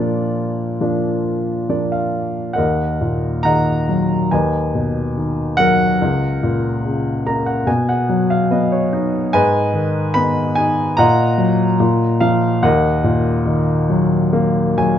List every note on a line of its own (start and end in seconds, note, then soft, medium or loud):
0.00 2.54 A#2 medium
0.00 0.78 F3 soft
0.00 0.78 A#3 soft
0.00 0.78 D4 soft
0.00 1.65 F4 medium
0.00 1.65 D5 medium
0.81 1.66 F3 soft
0.81 1.67 A#3 soft
0.81 1.67 D4 soft
1.69 2.55 F3 soft
1.69 2.55 A#3 soft
1.69 2.55 D4 soft
1.69 1.90 D5 soft
1.92 2.54 F5 soft
2.53 4.28 A#4 medium
2.53 3.43 D#5 soft
2.53 3.39 F#5 medium
2.58 4.29 D#2 soft
3.01 4.28 A#2 soft
3.43 4.30 D#3 soft
3.43 4.28 D#5 medium
3.43 4.28 F#5 medium
3.43 4.27 A#5 medium
3.89 4.31 F#3 soft
4.31 5.96 D#2 medium
4.31 5.96 B4 soft
4.31 5.96 D#5 soft
4.31 5.12 G#5 medium
4.75 5.96 B2 soft
5.17 5.98 D#3 soft
5.57 5.99 F#3 soft
5.57 8.06 A#4 medium
5.57 7.45 F#5 loud
6.02 7.64 C#2 medium
6.43 7.65 A#2 soft
6.85 7.66 C#3 soft
7.26 7.67 A#3 soft
7.26 7.46 A#5 medium
7.46 7.66 F#5 medium
7.67 9.29 B2 medium
7.67 7.87 G#5 medium
7.89 8.28 F#5 medium
8.09 9.30 F#3 medium
8.30 8.50 F5 medium
8.51 9.31 B3 soft
8.51 8.71 D#5 medium
8.72 9.29 C#5 medium
8.93 9.32 D#4 medium
9.33 10.94 G#2 medium
9.33 10.95 B4 medium
9.33 10.95 D#5 medium
9.33 10.18 G#5 medium
9.74 10.94 D#3 medium
10.14 10.96 B3 medium
10.14 10.58 B5 medium
10.55 10.97 D#4 medium
10.55 10.94 G#5 medium
10.97 11.78 A#2 medium
10.97 12.17 D#5 medium
10.97 12.18 F#5 medium
10.97 12.25 A#5 loud
11.38 11.78 F#3 medium
11.80 12.61 A#2 medium
12.21 12.62 F3 medium
12.21 12.64 F5 medium
12.62 14.98 D#2 medium
12.62 14.98 A#4 medium
12.62 14.98 D#5 medium
12.62 14.98 F#5 medium
13.04 14.73 A#2 medium
13.46 14.98 D#3 medium
13.90 14.76 F#3 medium
14.33 14.98 A#3 medium
14.78 14.98 F#3 medium
14.78 14.98 G#5 medium